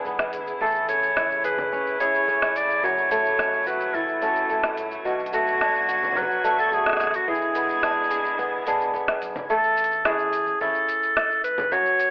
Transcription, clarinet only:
0.61 A4
0.89 C#5
1.45 B4
2.00 C#5
2.56 D5
2.84 C#5
3.11 C#5
3.67 B4
3.95 A4
5.34 F#4
6.17 B4
6.59 A4
6.74 G#4
7.16 F#4
7.29 G#4
9.50 A4
10.06 G#4
10.61 A4
11.44 B4
11.72 C#5

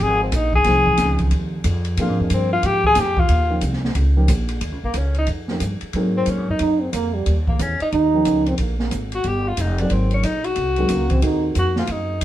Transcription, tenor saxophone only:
0.03 G#4
0.23 C4
0.36 D#4
0.55 G#4
2.00 F4
2.22 G#3
2.34 C4
2.53 F4
2.66 G4
2.86 G#4
3.00 G4
3.20 F4
4.85 A#3
4.97 C#4
5.19 D#4
6.17 C4
6.30 C#4
6.51 D#4
7.49 A#3
7.62 C#4
7.82 D#4
9.15 F#4
9.27 G4
9.48 F4
9.61 D#4
9.80 D4
9.92 C4
10.14 C#4
10.25 D#4
10.45 F#4
11.59 F#4
11.79 F4
11.91 D#4

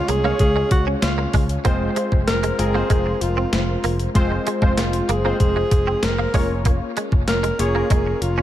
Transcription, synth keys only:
Already playing: C#3 G#3 C#4 F4 C#5
0.24 G#3 C#4 C#5 F5
1.64 G#3 C4 F4 C5
2.58 G#3 C4 F4 A#4
2.74 G#3 C4 F4 C5
4.15 G#3 C4 F4 C5
4.61 G#3 C4 F4 C5
5.24 G#3 C4 F4 C5
6.33 A#3 C#4 F4 C#5
7.59 A#3 C#4 F4 C#5
7.74 A#3 C#4 F4 A#4

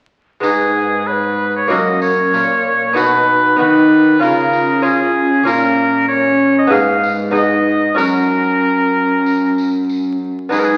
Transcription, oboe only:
0.44 G#4
1.07 B4
1.57 C#5
1.70 D#5
2.02 C#5
2.97 B4
3.59 B4
4.23 A#4
4.84 G#4
5.46 A#4
6.09 C#5
6.59 D#5
6.72 F5
7.35 D#5
7.98 A#4
10.52 G#4
10.59 A#4
10.64 G#4

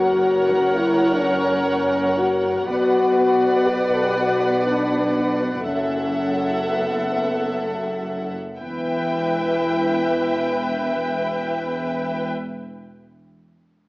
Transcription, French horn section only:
Already playing: F#4
0.75 E4
1.10 D4
1.20 C#4
2.18 F#4
2.69 F#4
3.67 B4
3.93 A4
4.04 G4
4.17 F#4
4.65 D4
5.65 C#4
6.64 B3
7.12 B3
7.61 A3
8.60 E3

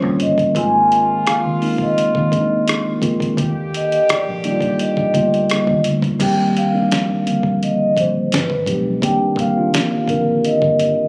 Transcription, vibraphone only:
Already playing: C#5
0.22 D#5
0.57 G#5
1.28 F5
1.83 D#5
3.77 D#5
4.11 D5
4.46 D5
4.81 D#5
6.22 G5
6.58 F5
7.64 D#5
7.99 C5
8.34 B4
9.05 G5
9.40 F5
10.46 D#5
10.81 D#5

